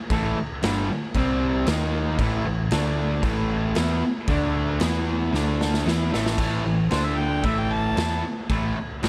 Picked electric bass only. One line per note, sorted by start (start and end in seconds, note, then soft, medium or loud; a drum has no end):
0.10 0.35 A1 loud
0.37 muted picked electric bass stroke soft
0.63 0.88 G1 medium
0.90 muted picked electric bass stroke soft
1.14 1.64 C2 loud
1.67 2.16 D#2 loud
2.19 2.44 A1 loud
2.46 2.71 A1 medium
2.72 3.21 D2 medium
3.23 3.72 A1 loud
3.77 4.01 E2 medium
4.28 4.77 D2 loud
4.82 5.31 E2 medium
5.33 5.82 D2 loud
5.86 6.11 E2 medium
6.14 6.37 A1 loud
6.38 6.63 A1 medium
6.65 6.90 A1 medium
6.92 7.41 D2 medium
7.44 7.93 A1 loud
7.97 8.22 E2 medium
8.50 8.74 A1 loud
8.77 muted picked electric bass stroke soft
9.03 9.09 G1 medium